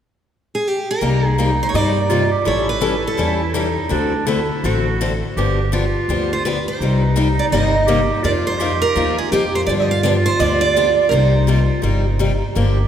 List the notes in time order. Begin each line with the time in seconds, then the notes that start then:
0.55 G#4
0.68 G4
0.91 A#4
1.01 C2 C3 G3 A#3 D#4 G4
1.38 C3 G3 A#3 D#4 G4
1.63 C5
1.69 C#5
1.74 G2 C3 G3 A#3 D#4 G4 D5
2.10 C3 G3 A#3 D#4 F4 G4
2.31 G4
2.45 A1 E3 G3 C#4 E4 A4 C#5
2.69 B4
2.81 E3 G3 C#4 E4 A4
3.07 A4
3.17 E2 E3 G3 C#4 E4 A4
3.54 E3 G3 C#4 D#4 E4 A4
3.89 D2 D3 A3 C4 D4 F#4 A4
4.27 D3 A3 C4 E4 F#4 A4
4.64 A1 D3 A3 C4 F#4 A4
5.01 D3 A3 C4 F#4 A4
5.37 G1 D3 F3 B3 D4 G4
5.72 D3 F3 B3 D4 F4 G4
6.08 D2 D3 F3 B3 D4 G4
6.33 C5
6.45 D3 F3 B3 D4 G4 B4
6.68 C5
6.79 C2 C3 G3 A#3 D#4 G4
7.01 B4
7.16 C3 G3 A#3 D#4 G4
7.39 D5
7.52 G1 C3 G3 A#3 D#4 G4 D#5
7.87 C3 G3 A#3 D#4 G4
8.23 F2 F3 A#3 D#4 F4 A#4 D5
8.47 C5
8.59 F3 A#3 D#4 F4 G4 A#4
8.82 A#4
8.96 D#2 F3 A#3 D#4 F4 A#4
9.18 G#4
9.32 F2 F3 A#3 D#4 F4 G4 A#4
9.55 C5
9.67 G2 D3 F3 B3 D4 F4 G4 D5
9.80 D#5
9.91 F5
10.03 D3 F3 B3 D4 G4 D5
10.26 C5
10.40 D2 D3 F3 B3 D4 G4 D5
10.61 D5
10.76 D3 F3 B3 D4 G4
11.09 C2 C3 G3 D#4 A#4 C5
11.13 A#3 D#4 G4
11.47 C3 G3 A#3 D#4 F4 G4
11.82 G1 C3 G3 A#3 D#4 G4
12.19 C3 G3 A#3 D#4 G4
12.55 G1 D3 F3 A#3 D4 G4